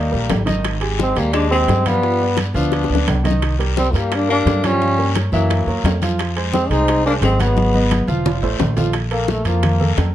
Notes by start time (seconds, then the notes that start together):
Already playing: G3 A#3
0.11 A#1 G3 G4 A#4, high bongo, high conga
0.29 G#1, high bongo, low bongo, high conga, high timbale, low timbale, short guiro
0.45 D#3 D#4 D#5, high bongo, high conga, high timbale, short guiro
0.64 high bongo, high conga, high timbale, long guiro
0.80 G#3 G4 G#4, high conga, high timbale
0.99 G#3 C4, high bongo, high conga, low timbale, short guiro
1.15 D#2 G3 G#3 A#3 G4 G#4, high conga, high timbale, short guiro
1.33 G#3 D4, high bongo, high conga, high timbale, long guiro
1.50 G#3 C4 G4 G#4, high conga
1.68 G2, high bongo, low bongo, high conga, high timbale, low timbale, short guiro
1.86 F3 G3 B3 F4 F5, high conga, high timbale, short guiro
2.03 F3 F4 F5, high bongo, high conga, long guiro
2.20 B3 B4 D5, high bongo, high conga
2.37 high bongo, high conga, high timbale, low timbale, short guiro
2.54 D2 F3 B3 D4 F4 F5, high conga, short guiro
2.72 high bongo, high conga, high timbale, long guiro
2.84 high bongo
2.89 D2 B3 B4 D5, high conga
2.95 low bongo
3.07 C2, high conga, high timbale, low timbale, short guiro
3.24 D#3 D#4 D#5, high conga, high timbale, short guiro
3.31 low bongo
3.42 high bongo, high timbale, long guiro
3.59 G3 G4 A#4, high conga, high timbale
3.77 G3 C4, high bongo, high conga, low timbale, short guiro
3.90 G2 F3 A3
3.94 G3 A#3 G4 A#4, high conga, high timbale, short guiro
4.12 A#3 D4, high bongo, high conga, high timbale, long guiro
4.28 G3 A#3 D4 G4 A#4, high conga
4.45 G2, high bongo, low bongo, high conga, high timbale, low timbale, short guiro
4.63 F3 G3 C#4 F4 F5, high conga, high timbale, short guiro
4.81 F3 F4 F5, high bongo, high conga, long guiro
4.98 A#3 A#4 C#5, high bongo, high conga
5.15 high bongo, high conga, high timbale, low timbale, short guiro
5.32 F#2 E3 F#3 A#3 E4 E5, high conga, short guiro
5.50 high bongo, high conga, high timbale, long guiro
5.66 F#2 A#3 A#4 C#5, high bongo, high conga
5.83 F2, high bongo, low bongo, high conga, high timbale, low timbale, short guiro
6.02 F3 F4 F5, high bongo, high conga, high timbale, short guiro
6.19 high bongo, high conga, high timbale, long guiro
6.36 G#3 G#4 C5, high conga, high timbale
6.53 G#3 C4, high bongo, high conga, low timbale, short guiro
6.69 C2 G#3 C4 D#4 G#4 C5, high conga, high timbale, short guiro
6.88 high bongo, high conga, high timbale, long guiro
7.05 G#3 A#3 D4 G#4 C5, high conga
7.21 G#1 G#3 C4, high bongo, low bongo, high conga, high timbale, low timbale, short guiro
7.39 F#3 G#3 B3 F#4 F#5, high conga, high timbale, short guiro
7.57 F#3 F#4 F#5, high bongo, high conga, long guiro
7.74 B3 B4 D#5, high bongo, high conga
7.91 high bongo, high conga, high timbale, low timbale, short guiro
8.07 F1 F3 F4 F5, low conga, short guiro
8.25 high bongo, low conga, high timbale, long guiro
8.42 A1 A3 A4 C5, high bongo, high timbale
8.59 A#1, high bongo, low bongo, low conga, low timbale, short guiro
8.76 F3 F4 F5, high bongo, low conga, low timbale, short guiro
8.93 high bongo, high conga, high timbale, long guiro
9.11 A#3 A4 A#4, high conga, high timbale
9.28 A3, high bongo, high conga, low timbale, short guiro
9.45 F2 F3 A#3 F4 F5, high conga, high timbale, short guiro
9.63 high bongo, high conga, low conga, high timbale, long guiro
9.80 A#3 A4 A#4, high conga, low conga
9.97 F2, high bongo, low bongo, high conga, high timbale, low timbale, short guiro